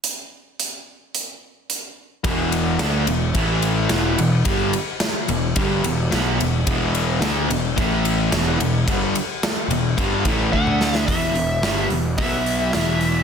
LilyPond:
<<
  \new Staff \with { instrumentName = "Lead electric guitar" } { \time 4/4 \key b \dorian \tempo 4 = 109 r1 | r1 | r1 | r1 |
r2. fis''4 | e''4. r8 e''2 | }
  \new Staff \with { instrumentName = "Overdriven electric guitar" } { \clef bass \time 4/4 \key b \dorian r1 | <e, b, e>4 <d a d'>8 <e, b,>8 <a, e a>4 <e, b, e>8 <e, b,>8 | <g, d g>8 r4 <e, b,>8 <g, d g>8 <e, b,>8 <b, fis b>8 <e, b,>8 | <e, b, e>4 <d a d'>8 <e, b,>8 <a, e a>4 <e, b, e>8 <e, b,>8 |
<g, d g>8 r4 <e, b,>8 <g, d g>8 <a, e a>8 <d a d'>4 | <e, b, e>8 <e, b,>8 <g, d g>8 <e, b,>8 <b, fis b>4 <e, b, e>4 | }
  \new Staff \with { instrumentName = "Overdriven electric guitar" } { \clef bass \time 4/4 \key b \dorian r1 | <e, b, e>4 <d a d'>8 <e, b,>8 <a, e a>4 <e, b, e>8 <e, b,>8 | <g, d g>8 r4 <e, b,>8 <g, d g>8 <e, b,>8 <b, fis b>8 <e, b,>8 | <e, b, e>4 <d a d'>8 <e, b,>8 <a, e a>4 <e, b, e>8 <e, b,>8 |
<g, d g>8 r4 <e, b,>8 <g, d g>8 <a, e a>8 <d a d'>4 | <e, b, e>8 <e, b,>8 <g, d g>8 <e, b,>8 <b, fis b>4 <e, b, e>4 | }
  \new Staff \with { instrumentName = "Picked electric bass" } { \clef bass \time 4/4 \key b \dorian r1 | e,,4 d,8 e,,8 a,,4 e,,8 e,,8 | g,,8 r4 e,,8 g,,8 e,,8 b,,8 e,,8 | e,,4 d,8 e,,8 a,,4 e,,8 e,,8 |
g,,8 r4 e,,8 g,,8 a,,8 d,4 | e,,8 e,,8 g,,8 e,,8 b,,4 e,,4 | }
  \new DrumStaff \with { instrumentName = "Drums" } \drummode { \time 4/4 hh4 hh4 hh4 hh4 | <bd cymr>8 cymr8 <cymr sn>8 cymr8 <bd cymr>8 cymr8 <cymr sn>8 cymr8 | <bd cymr>8 cymr8 <cymr sn>8 cymr8 <bd cymr>8 cymr8 <cymr sn>8 cymr8 | <bd cymr>8 cymr8 <cymr sn>8 cymr8 <bd cymr>8 cymr8 <cymr sn>8 cymr8 |
<bd cymr>8 cymr8 <cymr sn>8 cymr8 <bd cymr>8 <bd cymr>8 bd16 toml16 sn16 sn16 | <hho bd>8 hho8 <hho sn>8 hho8 <hho bd>8 hho8 <hho sn>8 hho8 | }
>>